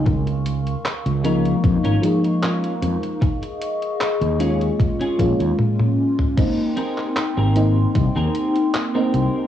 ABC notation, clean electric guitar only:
X:1
M:4/4
L:1/16
Q:1/4=76
K:Ab
V:1 name="Clean electric guitar"
z6 [DFB]2 z [DFB] z2 [DFB]2 z2 | z6 [DFA]2 z [DFA] z6 | z2 [CGAB]2 z [CGAB]2 z2 [CGAB]2 z2 [CGAB]3 |]